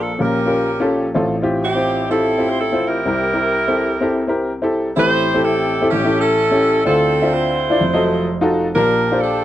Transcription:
0.00 0.16 A#1 medium
0.00 0.16 A#2 medium
0.00 0.17 D4 medium
0.00 0.10 F4 medium
0.00 0.16 F4 medium
0.00 0.11 A4 medium
0.00 0.21 A4 medium
0.00 0.11 A#4 medium
0.19 1.11 A#1 medium
0.19 1.11 A#2 medium
0.19 0.38 C#4 medium
0.19 1.12 C#4 medium
0.19 0.39 F4 medium
0.19 0.39 G4 medium
0.19 1.12 G4 medium
0.19 0.39 A#4 medium
0.19 0.92 A#4 medium
0.46 0.68 C#4 medium
0.46 0.68 F4 medium
0.46 0.69 G4 medium
0.46 0.69 A#4 medium
0.80 1.05 C#4 medium
0.80 1.06 F4 medium
0.80 1.06 G4 medium
0.80 1.06 A4 loud
1.14 3.02 A1 medium
1.14 3.02 A2 medium
1.14 1.34 C4 medium
1.14 1.34 E4 medium
1.14 1.34 F4 medium
1.14 1.35 A4 medium
1.42 1.64 C4 medium
1.42 1.64 E4 medium
1.42 1.64 F4 medium
1.42 1.64 G4 medium
1.63 2.10 C4 medium
1.63 2.10 E4 medium
1.63 2.08 G4 medium
1.75 2.01 C4 medium
1.75 2.01 E4 medium
1.75 2.01 F4 medium
1.75 2.02 C5 medium
2.10 2.29 C4 medium
2.10 3.02 C4 medium
2.10 2.30 E4 medium
2.10 2.85 E4 medium
2.10 2.30 F4 medium
2.10 2.30 G4 medium
2.10 2.46 A4 medium
2.38 2.59 C4 medium
2.38 2.60 E4 medium
2.38 2.60 F4 medium
2.38 2.60 G4 medium
2.49 2.59 C5 medium
2.59 2.84 A4 medium
2.72 2.97 C4 medium
2.72 2.97 E4 medium
2.72 2.97 F4 medium
2.72 2.98 C5 medium
2.87 4.45 E4 medium
2.87 4.45 G4 medium
2.87 4.50 A#4 loud
3.05 4.92 C2 medium
3.05 4.92 C3 medium
3.05 3.25 C4 medium
3.05 3.25 E4 medium
3.05 3.25 G4 medium
3.05 3.26 A#4 medium
3.33 3.55 C4 medium
3.33 3.55 E4 medium
3.33 3.55 G4 medium
3.33 3.56 A#4 medium
3.67 3.92 C4 medium
3.67 3.92 E4 medium
3.67 3.93 G4 medium
3.67 3.93 A4 medium
4.00 4.20 C4 medium
4.00 4.20 E4 medium
4.00 4.21 G4 medium
4.00 4.21 A4 medium
4.27 4.49 C4 medium
4.27 4.50 E4 medium
4.27 4.50 G4 medium
4.27 4.50 A#4 medium
4.62 4.87 C4 medium
4.62 4.87 E4 medium
4.62 4.87 G4 medium
4.62 4.88 A4 medium
4.96 5.88 A1 medium
4.96 5.88 A2 medium
4.96 5.24 C4 medium
4.96 5.43 E4 medium
4.96 5.25 E4 medium
4.96 5.87 G4 medium
4.96 5.25 G4 medium
4.96 5.25 A4 medium
4.96 5.41 C5 loud
5.34 5.68 C4 medium
5.34 5.68 E4 medium
5.34 5.69 G4 medium
5.34 5.69 A4 medium
5.44 5.88 C4 medium
5.44 5.88 E4 medium
5.44 5.92 A4 medium
5.81 5.91 C4 medium
5.81 5.92 E4 medium
5.81 5.92 G4 medium
5.81 5.92 A4 medium
5.90 6.83 A1 medium
5.90 6.82 A2 medium
5.90 6.18 C#4 medium
5.90 6.18 E4 medium
5.90 6.19 G4 loud
6.04 6.36 C#4 medium
6.04 6.36 E4 medium
6.04 6.37 G4 medium
6.04 6.37 A4 medium
6.19 6.82 C#4 medium
6.19 6.82 E4 medium
6.19 6.84 A4 loud
6.51 6.76 C#4 medium
6.51 6.77 E4 medium
6.51 6.77 G4 medium
6.51 6.77 A4 medium
6.85 7.76 D2 medium
6.85 7.77 D3 medium
6.85 7.76 C4 medium
6.85 7.13 D4 medium
6.85 7.14 E4 medium
6.85 7.33 F4 medium
6.85 7.14 F4 medium
6.85 7.30 A4 medium
6.85 7.14 C5 medium
7.22 7.56 D4 medium
7.22 7.57 F4 medium
7.22 7.57 C5 medium
7.22 7.57 E5 medium
7.33 8.51 E4 medium
7.33 8.51 F4 medium
7.33 8.55 C5 medium
7.70 7.80 D4 medium
7.70 7.80 E4 medium
7.70 7.81 F4 medium
7.70 7.81 D5 medium
7.80 8.71 F1 medium
7.80 8.71 F2 medium
7.94 8.25 F3 medium
7.94 8.25 F#3 medium
7.94 8.26 A4 medium
7.94 8.25 D#5 medium
8.41 8.65 D#4 medium
8.41 8.66 F4 medium
8.41 8.66 F#4 medium
8.41 8.66 A4 loud
8.75 9.45 A#1 medium
8.75 9.45 A#2 medium
8.75 9.03 D4 medium
8.75 9.21 D4 medium
8.75 9.03 F4 medium
8.75 9.45 G4 medium
8.75 9.03 G4 medium
8.75 9.19 A#4 medium
8.75 9.04 A#4 medium
9.12 9.45 D4 medium
9.12 9.45 F4 medium
9.12 9.45 G4 medium
9.12 9.45 C5 medium
9.21 9.45 D4 medium
9.21 9.45 F4 medium
9.21 9.45 A4 medium

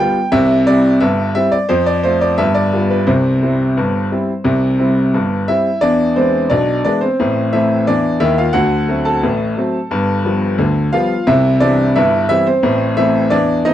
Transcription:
0.00 0.17 G3 medium
0.00 0.17 B3 medium
0.00 0.18 F4 medium
0.00 0.32 G5 loud
0.32 0.61 C2 medium
0.32 0.61 C3 loud
0.32 0.66 E5 loud
0.67 0.86 G3 soft
0.67 0.86 C4 soft
0.67 0.87 E4 medium
0.67 1.01 D5 medium
1.00 1.30 G1 medium
1.00 1.30 G2 medium
1.00 1.33 E5 medium
1.35 1.54 G3 medium
1.35 1.55 C4 medium
1.35 1.55 E4 medium
1.35 1.52 E5 loud
1.52 1.69 D5 medium
1.69 1.98 F2 medium
1.69 1.98 F3 medium
1.69 1.86 C5 loud
1.86 2.03 D5 medium
2.03 2.23 A3 soft
2.03 2.23 C4 soft
2.03 2.24 F4 medium
2.03 2.21 C5 medium
2.21 2.38 D5 medium
2.38 2.67 G1 medium
2.38 2.67 G2 medium
2.38 2.55 E5 loud
2.55 2.89 D5 medium
2.73 2.92 G3 soft
2.73 2.92 B3 medium
2.73 2.93 F4 medium
2.90 3.07 B4 medium
3.07 3.36 C2 medium
3.07 3.36 C3 medium
3.07 5.48 C5 medium
3.42 3.61 G3 soft
3.42 3.62 C4 soft
3.42 3.62 E4 soft
3.77 4.06 G1 medium
3.77 4.06 G2 medium
4.12 4.30 G3 soft
4.12 4.31 C4 soft
4.12 4.31 E4 medium
4.44 4.74 C2 medium
4.44 4.74 C3 medium
4.79 4.98 G3 soft
4.79 4.99 C4 soft
4.79 4.99 E4 soft
5.14 5.43 G1 medium
5.14 5.43 G2 medium
5.48 5.68 G3 soft
5.48 5.68 C4 medium
5.48 5.81 E4 medium
5.48 5.83 E5 medium
5.81 6.11 E2 medium
5.81 6.11 E3 medium
5.81 6.14 D4 medium
5.81 6.16 D5 loud
6.16 6.36 E3 soft
6.16 6.36 G#3 soft
6.16 6.36 B3 soft
6.16 6.49 C4 medium
6.16 6.51 C5 medium
6.50 6.80 B1 medium
6.50 6.80 B2 medium
6.50 6.83 D4 medium
6.50 6.83 D5 medium
6.84 7.03 E3 soft
6.84 7.04 G#3 medium
6.84 7.04 B3 medium
6.84 7.01 D4 medium
6.84 7.02 D5 medium
7.01 7.50 C4 medium
7.01 7.53 C5 medium
7.20 7.49 A1 medium
7.20 7.48 A2 medium
7.53 7.72 E3 soft
7.53 7.72 A3 soft
7.53 7.73 C4 medium
7.53 7.85 E4 medium
7.53 7.87 E5 medium
7.87 8.16 E2 medium
7.87 8.17 E3 medium
7.87 8.19 D4 medium
7.87 8.21 D5 medium
8.20 8.48 D#2 medium
8.20 8.48 D#3 medium
8.20 8.37 E4 medium
8.20 8.38 E5 loud
8.38 8.55 F4 medium
8.38 8.55 F5 medium
8.53 8.83 D2 medium
8.53 8.83 D3 medium
8.53 9.02 F#4 medium
8.53 9.05 F#5 loud
8.89 9.08 F#3 medium
8.89 9.08 A3 medium
8.89 9.08 C4 soft
9.05 10.55 A4 medium
9.05 10.59 A5 medium
9.23 9.52 A1 medium
9.23 9.52 A2 medium
9.57 9.76 F#3 medium
9.57 9.76 A3 soft
9.57 9.77 C4 medium
9.91 10.20 G1 medium
9.91 10.20 G2 medium
10.25 10.44 F3 soft
10.25 10.44 G3 soft
10.25 10.44 B3 medium
10.58 10.88 D2 medium
10.58 10.88 D3 medium
10.93 11.12 F3 medium
10.93 11.12 G3 medium
10.93 11.13 B3 medium
10.93 11.26 F4 medium
10.93 11.27 F5 loud
11.27 11.56 C2 medium
11.27 11.56 C3 loud
11.27 11.60 E4 medium
11.27 11.62 E5 loud
11.60 11.80 E3 soft
11.60 11.80 G3 soft
11.60 11.80 C4 medium
11.60 11.93 D4 medium
11.60 11.95 D5 loud
11.96 12.25 G1 medium
11.96 12.25 G2 medium
11.96 12.28 E4 medium
11.96 12.27 E5 medium
12.29 12.48 E3 medium
12.29 12.49 G3 medium
12.29 12.46 C4 medium
12.29 12.46 E4 medium
12.29 12.46 E5 loud
12.47 12.95 C4 medium
12.47 12.98 C5 medium
12.63 12.92 A1 medium
12.63 12.92 A2 medium
12.97 13.16 E3 medium
12.97 13.16 A3 medium
12.97 13.17 C4 medium
12.97 13.29 E4 medium
12.97 13.31 E5 loud
13.30 13.60 E2 medium
13.30 13.60 E3 medium
13.30 13.63 D4 medium
13.30 13.65 D5 medium
13.65 13.74 E3 medium
13.65 13.74 A3 medium
13.65 13.74 C4 medium
13.65 13.74 D#4 medium
13.65 13.74 D#5 loud

